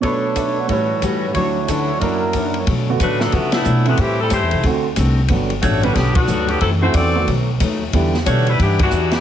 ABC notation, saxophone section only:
X:1
M:4/4
L:1/8
Q:"Swing" 1/4=182
K:Bm
V:1 name="Saxophone section"
z8 | z8 | z2 [A,DFB] [F,B,DA] [D,A,B,F] [A,B,DE]2 [D,A,B,F] | [E,A,=CG] [G,CEA] [A,EG=c]2 z4 |
z2 [A,DFc] [G,DFB] [D,F,B,G] [D,G,B,F]2 [D,F,B,G] | [F,=CEA] [A,EF=c] [CFAd]2 z4 | z2 [A,DFc] [G,DEB] [E,B,DG] [E,B,DF]2 [E,B,DG] |]